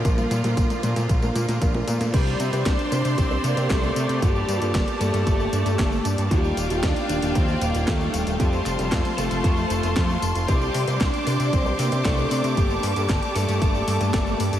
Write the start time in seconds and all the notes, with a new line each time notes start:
Already playing: D3 F3 A#3 F4
0.05 A#1 A#3 D4 F4 A#4, kick, closed hi-hat, mid tom, tambourine
0.18 mid tom, tambourine
0.31 A#2, closed hi-hat, mid tom, tambourine
0.44 A#2 A#3 D4 F4 A#4, closed hi-hat, mid tom, tambourine
0.57 A#1, kick, closed hi-hat, mid tom, tambourine
0.70 closed hi-hat, mid tom, tambourine
0.83 A#2 A#3 D4 F4 A#4, closed hi-hat, mid tom, tambourine
0.96 A#2, closed hi-hat, mid tom, tambourine
1.09 A#1, kick, closed hi-hat, mid tom, tambourine
1.22 A#3 D4 F4 A#4, mid tom, tambourine
1.35 A#2, closed hi-hat, mid tom, tambourine
1.48 A#2, closed hi-hat, mid tom, tambourine
1.61 A#1 A#3 D4 F4 A#4, kick, closed hi-hat, mid tom, tambourine
1.74 A#3 D4 F4 A#4, mid tom
1.88 A#2 A#3 D4 F4 A#4, closed hi-hat, mid tom, tambourine
2.01 A#2, closed hi-hat, mid tom, tambourine
2.14 C2 G3 C4 D4 G4 C5 D5 C6, kick, closed hi-hat, tambourine, crash
2.27 tambourine
2.40 C3, closed hi-hat, tambourine
2.53 C3 C4 D4 G4 C5, closed hi-hat, tambourine
2.66 C2 D4 D5, kick, snare, clap, closed hi-hat, tambourine
2.79 closed hi-hat, tambourine
2.92 C3 C4 D4 G4 C5, closed hi-hat, tambourine
3.05 C3, closed hi-hat, tambourine
3.18 C2 C4 C5, kick, closed hi-hat, high tom, tambourine
3.31 C4 D4 G4 C5, tambourine
3.44 C3 A#3 A#4, closed hi-hat, tambourine
3.57 C3 C4 D4 G4 C5, closed hi-hat, tambourine
3.70 C2 A3 A4, kick, snare, clap, closed hi-hat, tambourine
3.83 C4 D4 G4 C5, tambourine
3.96 C3, closed hi-hat, tambourine
4.09 C3, closed hi-hat, tambourine
4.22 G1 G3 A#3 D4 G4 A4 A5, kick, closed hi-hat, tambourine
4.35 tambourine
4.49 G2, closed hi-hat, tambourine
4.61 G2 A#3 D4 G4 A4, closed hi-hat, tambourine
4.75 G1, kick, snare, clap, closed hi-hat, tambourine
4.88 closed hi-hat, tambourine
5.00 G2 A3 A#3 D4 G4 A4, closed hi-hat, tambourine
5.14 G2, closed hi-hat, tambourine
5.27 G1 A3 A4, kick, closed hi-hat, tambourine
5.40 A#3 D4 G4 A4, tambourine
5.53 G2, closed hi-hat, tambourine
5.66 G2 A#3 D4 G4 A4, closed hi-hat, tambourine
5.79 G1, kick, snare, clap, closed hi-hat, tambourine
5.92 A#3 D4 G4 A4, tambourine
6.05 G2, closed hi-hat, tambourine
6.18 G2, closed hi-hat, tambourine
6.31 D#2 G3 A#3 D#4 F4 G4 F5 G5, kick, closed hi-hat, tambourine
6.44 tambourine
6.57 D#1, closed hi-hat, tambourine
6.70 D#1 A#3 D#4 F4 G4, closed hi-hat, tambourine
6.83 D#2 D4 D5, kick, snare, clap, closed hi-hat, tambourine
6.96 closed hi-hat, tambourine
7.09 D#1 A#3 D#4 F4 G4, closed hi-hat, tambourine
7.22 D#1, closed hi-hat, tambourine
7.35 D#2 C4 C5, kick, closed hi-hat, high tom, tambourine
7.48 A#3 D#4 F4 G4, tambourine
7.62 D#1 A#3 A#4, closed hi-hat, tambourine
7.75 D#1 A#3 D#4 F4 G4, closed hi-hat, tambourine
7.88 D#2 A3 A4, kick, snare, clap, closed hi-hat, tambourine
8.01 G3 D#4 F4 G4, tambourine
8.14 D#1, closed hi-hat, tambourine
8.27 D#1, closed hi-hat, tambourine
8.40 F2 G3 A3 C4 F4 G4 A4 C5 A5 C6, kick, closed hi-hat, tambourine
8.53 tambourine
8.66 F1, clap, closed hi-hat, tambourine
8.79 F1 A3 C4 F4 A4, closed hi-hat, tambourine
8.92 F2, kick, snare, clap, closed hi-hat, tambourine
9.05 closed hi-hat, high tom, tambourine
9.18 F1 A3 C4 F4 A4, closed hi-hat, tambourine
9.31 F1, closed hi-hat, tambourine
9.44 F2 A3 A4, kick, closed hi-hat, tambourine
9.57 A3 C4 F4 A4, tambourine
9.70 F1, closed hi-hat, tambourine
9.83 F1 A3 C4 F4 A4, closed hi-hat, tambourine
9.96 F2, kick, snare, clap, closed hi-hat, tambourine
10.09 A3 C4 F4 A4, tambourine
10.22 F1, closed hi-hat, tambourine
10.35 F1, closed hi-hat, tambourine
10.48 C2 G3 C4 D4 G4 C5 D5 D6, kick, closed hi-hat, tambourine
10.61 tambourine
10.75 C3, open hi-hat, tambourine
10.88 C3 C4 D4 G4 C5, closed hi-hat, tambourine
11.01 C2 D4 D5, kick, snare, clap, closed hi-hat, tambourine
11.14 closed hi-hat, tambourine
11.27 C3 C4 D4 G4 C5, open hi-hat, tambourine
11.40 C3, closed hi-hat, tambourine
11.52 C2 C4 C5, kick, closed hi-hat, high tom, tambourine
11.66 C4 D4 G4 C5, tambourine
11.79 C3 A#3 A#4, open hi-hat, tambourine
11.92 C3 C4 D4 G4 C5, closed hi-hat, tambourine
12.05 C2 A3 A4, kick, snare, clap, closed hi-hat, tambourine
12.18 C4 D4 G4 C5, tambourine
12.31 C3, open hi-hat, tambourine
12.44 C3, closed hi-hat, tambourine
12.57 G1 G3 A#3 D4 G4 A4 A5, kick, closed hi-hat, tambourine
12.70 tambourine
12.83 G2, open hi-hat, tambourine
12.96 G2 A#3 D4 G4 A4, closed hi-hat, tambourine
13.09 G1, kick, snare, clap, closed hi-hat, tambourine
13.23 closed hi-hat, tambourine
13.35 G2 A3 A#3 D4 G4 A4, open hi-hat, tambourine
13.49 G2, closed hi-hat, tambourine
13.62 G1 A3 A4, kick, closed hi-hat, tambourine
13.75 A#3 D4 G4 A4, tambourine
13.88 G2, open hi-hat, tambourine
14.01 G2 A#3 D4 G4 A4, closed hi-hat, tambourine
14.14 G1, kick, snare, clap, closed hi-hat, tambourine
14.27 A#3 D4 G4 A4, tambourine
14.40 G2, open hi-hat, tambourine
14.53 G2, closed hi-hat, tambourine